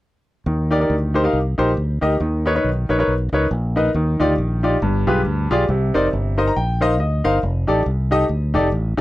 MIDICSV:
0, 0, Header, 1, 3, 480
1, 0, Start_track
1, 0, Key_signature, -3, "major"
1, 0, Tempo, 435098
1, 509, Time_signature, 4, 2, 24, 8
1, 9937, End_track
2, 0, Start_track
2, 0, Title_t, "Grand piano"
2, 0, Program_c, 0, 0
2, 512, Note_on_c, 0, 51, 63
2, 779, Note_on_c, 0, 63, 74
2, 785, Note_on_c, 0, 67, 69
2, 787, Note_on_c, 0, 70, 64
2, 793, Note_on_c, 0, 74, 90
2, 848, Note_off_c, 0, 63, 0
2, 851, Note_off_c, 0, 67, 0
2, 852, Note_off_c, 0, 70, 0
2, 855, Note_off_c, 0, 74, 0
2, 882, Note_on_c, 0, 63, 64
2, 887, Note_on_c, 0, 67, 59
2, 888, Note_on_c, 0, 70, 60
2, 895, Note_on_c, 0, 74, 73
2, 1026, Note_off_c, 0, 63, 0
2, 1029, Note_off_c, 0, 67, 0
2, 1029, Note_off_c, 0, 70, 0
2, 1033, Note_off_c, 0, 74, 0
2, 1225, Note_off_c, 0, 51, 0
2, 1261, Note_on_c, 0, 63, 75
2, 1266, Note_on_c, 0, 67, 68
2, 1269, Note_on_c, 0, 70, 65
2, 1275, Note_on_c, 0, 72, 85
2, 1329, Note_off_c, 0, 63, 0
2, 1332, Note_off_c, 0, 67, 0
2, 1334, Note_off_c, 0, 70, 0
2, 1337, Note_off_c, 0, 72, 0
2, 1364, Note_on_c, 0, 63, 75
2, 1368, Note_on_c, 0, 67, 60
2, 1371, Note_on_c, 0, 70, 70
2, 1376, Note_on_c, 0, 77, 76
2, 1508, Note_off_c, 0, 63, 0
2, 1510, Note_off_c, 0, 67, 0
2, 1511, Note_off_c, 0, 70, 0
2, 1514, Note_off_c, 0, 77, 0
2, 1741, Note_on_c, 0, 63, 76
2, 1747, Note_on_c, 0, 67, 66
2, 1750, Note_on_c, 0, 70, 69
2, 1753, Note_on_c, 0, 72, 90
2, 1876, Note_off_c, 0, 63, 0
2, 1879, Note_off_c, 0, 67, 0
2, 1880, Note_off_c, 0, 70, 0
2, 1882, Note_off_c, 0, 72, 0
2, 2221, Note_on_c, 0, 63, 73
2, 2226, Note_on_c, 0, 67, 72
2, 2230, Note_on_c, 0, 70, 67
2, 2234, Note_on_c, 0, 75, 85
2, 2356, Note_off_c, 0, 63, 0
2, 2359, Note_off_c, 0, 67, 0
2, 2361, Note_off_c, 0, 70, 0
2, 2363, Note_off_c, 0, 75, 0
2, 2433, Note_on_c, 0, 51, 66
2, 2709, Note_on_c, 0, 63, 76
2, 2713, Note_on_c, 0, 70, 66
2, 2716, Note_on_c, 0, 71, 68
2, 2722, Note_on_c, 0, 73, 88
2, 2776, Note_off_c, 0, 63, 0
2, 2777, Note_off_c, 0, 70, 0
2, 2779, Note_off_c, 0, 71, 0
2, 2782, Note_off_c, 0, 73, 0
2, 2812, Note_on_c, 0, 63, 66
2, 2816, Note_on_c, 0, 70, 55
2, 2820, Note_on_c, 0, 71, 63
2, 2823, Note_on_c, 0, 73, 77
2, 2954, Note_off_c, 0, 63, 0
2, 2955, Note_off_c, 0, 70, 0
2, 2957, Note_off_c, 0, 71, 0
2, 2959, Note_off_c, 0, 73, 0
2, 3148, Note_off_c, 0, 51, 0
2, 3189, Note_on_c, 0, 63, 70
2, 3192, Note_on_c, 0, 70, 68
2, 3196, Note_on_c, 0, 71, 69
2, 3201, Note_on_c, 0, 73, 83
2, 3256, Note_off_c, 0, 63, 0
2, 3258, Note_off_c, 0, 70, 0
2, 3259, Note_off_c, 0, 71, 0
2, 3262, Note_off_c, 0, 73, 0
2, 3292, Note_on_c, 0, 63, 70
2, 3296, Note_on_c, 0, 70, 67
2, 3301, Note_on_c, 0, 71, 68
2, 3308, Note_on_c, 0, 73, 80
2, 3434, Note_off_c, 0, 63, 0
2, 3436, Note_off_c, 0, 70, 0
2, 3438, Note_off_c, 0, 71, 0
2, 3442, Note_off_c, 0, 73, 0
2, 3671, Note_on_c, 0, 63, 75
2, 3674, Note_on_c, 0, 70, 66
2, 3680, Note_on_c, 0, 71, 68
2, 3686, Note_on_c, 0, 73, 88
2, 3802, Note_off_c, 0, 63, 0
2, 3804, Note_off_c, 0, 70, 0
2, 3807, Note_off_c, 0, 71, 0
2, 3810, Note_off_c, 0, 73, 0
2, 4147, Note_on_c, 0, 63, 81
2, 4154, Note_on_c, 0, 70, 66
2, 4156, Note_on_c, 0, 71, 64
2, 4159, Note_on_c, 0, 75, 81
2, 4281, Note_off_c, 0, 63, 0
2, 4284, Note_off_c, 0, 70, 0
2, 4285, Note_off_c, 0, 71, 0
2, 4286, Note_off_c, 0, 75, 0
2, 4362, Note_on_c, 0, 51, 73
2, 4630, Note_on_c, 0, 63, 79
2, 4635, Note_on_c, 0, 65, 70
2, 4637, Note_on_c, 0, 67, 70
2, 4641, Note_on_c, 0, 74, 89
2, 4762, Note_off_c, 0, 63, 0
2, 4765, Note_off_c, 0, 65, 0
2, 4766, Note_off_c, 0, 67, 0
2, 4768, Note_off_c, 0, 74, 0
2, 5073, Note_off_c, 0, 51, 0
2, 5109, Note_on_c, 0, 63, 71
2, 5113, Note_on_c, 0, 65, 69
2, 5119, Note_on_c, 0, 67, 68
2, 5120, Note_on_c, 0, 74, 81
2, 5242, Note_off_c, 0, 63, 0
2, 5244, Note_off_c, 0, 65, 0
2, 5247, Note_off_c, 0, 67, 0
2, 5247, Note_off_c, 0, 74, 0
2, 5322, Note_on_c, 0, 43, 74
2, 5593, Note_on_c, 0, 65, 80
2, 5596, Note_on_c, 0, 67, 78
2, 5600, Note_on_c, 0, 68, 70
2, 5607, Note_on_c, 0, 71, 79
2, 5724, Note_off_c, 0, 65, 0
2, 5725, Note_off_c, 0, 67, 0
2, 5727, Note_off_c, 0, 68, 0
2, 5730, Note_off_c, 0, 71, 0
2, 6032, Note_off_c, 0, 43, 0
2, 6076, Note_on_c, 0, 65, 88
2, 6079, Note_on_c, 0, 67, 73
2, 6082, Note_on_c, 0, 68, 74
2, 6089, Note_on_c, 0, 74, 92
2, 6205, Note_off_c, 0, 65, 0
2, 6207, Note_off_c, 0, 67, 0
2, 6208, Note_off_c, 0, 68, 0
2, 6211, Note_off_c, 0, 74, 0
2, 6285, Note_on_c, 0, 48, 65
2, 6556, Note_on_c, 0, 63, 82
2, 6559, Note_on_c, 0, 70, 71
2, 6564, Note_on_c, 0, 72, 69
2, 6568, Note_on_c, 0, 74, 88
2, 6685, Note_off_c, 0, 63, 0
2, 6686, Note_off_c, 0, 70, 0
2, 6689, Note_off_c, 0, 72, 0
2, 6690, Note_off_c, 0, 74, 0
2, 6992, Note_off_c, 0, 48, 0
2, 7033, Note_on_c, 0, 63, 69
2, 7037, Note_on_c, 0, 70, 68
2, 7038, Note_on_c, 0, 84, 60
2, 7041, Note_on_c, 0, 72, 75
2, 7044, Note_on_c, 0, 75, 88
2, 7130, Note_off_c, 0, 84, 0
2, 7143, Note_on_c, 0, 82, 73
2, 7163, Note_off_c, 0, 63, 0
2, 7165, Note_off_c, 0, 70, 0
2, 7166, Note_off_c, 0, 72, 0
2, 7168, Note_off_c, 0, 75, 0
2, 7233, Note_off_c, 0, 82, 0
2, 7242, Note_on_c, 0, 79, 70
2, 7496, Note_off_c, 0, 79, 0
2, 7509, Note_on_c, 0, 63, 75
2, 7512, Note_on_c, 0, 70, 70
2, 7517, Note_on_c, 0, 72, 72
2, 7518, Note_on_c, 0, 77, 70
2, 7525, Note_on_c, 0, 75, 97
2, 7640, Note_off_c, 0, 63, 0
2, 7642, Note_off_c, 0, 70, 0
2, 7644, Note_off_c, 0, 72, 0
2, 7648, Note_off_c, 0, 75, 0
2, 7704, Note_off_c, 0, 77, 0
2, 7721, Note_on_c, 0, 75, 62
2, 7974, Note_off_c, 0, 75, 0
2, 7990, Note_on_c, 0, 63, 84
2, 7993, Note_on_c, 0, 70, 79
2, 7994, Note_on_c, 0, 77, 97
2, 7998, Note_on_c, 0, 72, 68
2, 8120, Note_off_c, 0, 63, 0
2, 8122, Note_off_c, 0, 70, 0
2, 8124, Note_off_c, 0, 72, 0
2, 8125, Note_off_c, 0, 77, 0
2, 8465, Note_on_c, 0, 63, 75
2, 8470, Note_on_c, 0, 67, 71
2, 8476, Note_on_c, 0, 69, 80
2, 8478, Note_on_c, 0, 74, 82
2, 8597, Note_off_c, 0, 63, 0
2, 8600, Note_off_c, 0, 67, 0
2, 8603, Note_off_c, 0, 69, 0
2, 8604, Note_off_c, 0, 74, 0
2, 8946, Note_on_c, 0, 63, 73
2, 8952, Note_on_c, 0, 67, 70
2, 8955, Note_on_c, 0, 69, 71
2, 8958, Note_on_c, 0, 75, 94
2, 9077, Note_off_c, 0, 63, 0
2, 9080, Note_off_c, 0, 67, 0
2, 9081, Note_off_c, 0, 69, 0
2, 9083, Note_off_c, 0, 75, 0
2, 9420, Note_on_c, 0, 63, 85
2, 9426, Note_on_c, 0, 67, 78
2, 9428, Note_on_c, 0, 69, 79
2, 9433, Note_on_c, 0, 74, 90
2, 9553, Note_off_c, 0, 63, 0
2, 9556, Note_off_c, 0, 67, 0
2, 9557, Note_off_c, 0, 69, 0
2, 9560, Note_off_c, 0, 74, 0
2, 9900, Note_on_c, 0, 63, 85
2, 9901, Note_on_c, 0, 67, 78
2, 9937, Note_off_c, 0, 63, 0
2, 9937, Note_off_c, 0, 67, 0
2, 9937, End_track
3, 0, Start_track
3, 0, Title_t, "Fingered electric bass"
3, 0, Program_c, 1, 33
3, 509, Note_on_c, 1, 39, 93
3, 918, Note_off_c, 1, 39, 0
3, 989, Note_on_c, 1, 38, 92
3, 1399, Note_off_c, 1, 38, 0
3, 1468, Note_on_c, 1, 36, 83
3, 1705, Note_off_c, 1, 36, 0
3, 1747, Note_on_c, 1, 34, 85
3, 1921, Note_off_c, 1, 34, 0
3, 1951, Note_on_c, 1, 38, 93
3, 2188, Note_off_c, 1, 38, 0
3, 2228, Note_on_c, 1, 38, 73
3, 2402, Note_off_c, 1, 38, 0
3, 2432, Note_on_c, 1, 39, 89
3, 2842, Note_off_c, 1, 39, 0
3, 2915, Note_on_c, 1, 35, 84
3, 3151, Note_off_c, 1, 35, 0
3, 3193, Note_on_c, 1, 34, 76
3, 3366, Note_off_c, 1, 34, 0
3, 3392, Note_on_c, 1, 35, 83
3, 3629, Note_off_c, 1, 35, 0
3, 3666, Note_on_c, 1, 37, 76
3, 3842, Note_off_c, 1, 37, 0
3, 3871, Note_on_c, 1, 34, 95
3, 4282, Note_off_c, 1, 34, 0
3, 4352, Note_on_c, 1, 39, 100
3, 4589, Note_off_c, 1, 39, 0
3, 4633, Note_on_c, 1, 38, 81
3, 4806, Note_off_c, 1, 38, 0
3, 4835, Note_on_c, 1, 34, 89
3, 5244, Note_off_c, 1, 34, 0
3, 5317, Note_on_c, 1, 31, 100
3, 5552, Note_off_c, 1, 31, 0
3, 5597, Note_on_c, 1, 35, 98
3, 5768, Note_off_c, 1, 35, 0
3, 5800, Note_on_c, 1, 38, 84
3, 6034, Note_off_c, 1, 38, 0
3, 6075, Note_on_c, 1, 35, 81
3, 6247, Note_off_c, 1, 35, 0
3, 6274, Note_on_c, 1, 36, 91
3, 6510, Note_off_c, 1, 36, 0
3, 6556, Note_on_c, 1, 29, 85
3, 6727, Note_off_c, 1, 29, 0
3, 6763, Note_on_c, 1, 31, 91
3, 7167, Note_off_c, 1, 31, 0
3, 7243, Note_on_c, 1, 34, 78
3, 7718, Note_off_c, 1, 34, 0
3, 7718, Note_on_c, 1, 38, 83
3, 7951, Note_off_c, 1, 38, 0
3, 7993, Note_on_c, 1, 31, 77
3, 8164, Note_off_c, 1, 31, 0
3, 8196, Note_on_c, 1, 29, 93
3, 8430, Note_off_c, 1, 29, 0
3, 8471, Note_on_c, 1, 33, 82
3, 8643, Note_off_c, 1, 33, 0
3, 8671, Note_on_c, 1, 36, 90
3, 9078, Note_off_c, 1, 36, 0
3, 9149, Note_on_c, 1, 38, 81
3, 9423, Note_on_c, 1, 29, 81
3, 9439, Note_off_c, 1, 38, 0
3, 9597, Note_off_c, 1, 29, 0
3, 9623, Note_on_c, 1, 33, 93
3, 9861, Note_off_c, 1, 33, 0
3, 9899, Note_on_c, 1, 33, 78
3, 9937, Note_off_c, 1, 33, 0
3, 9937, End_track
0, 0, End_of_file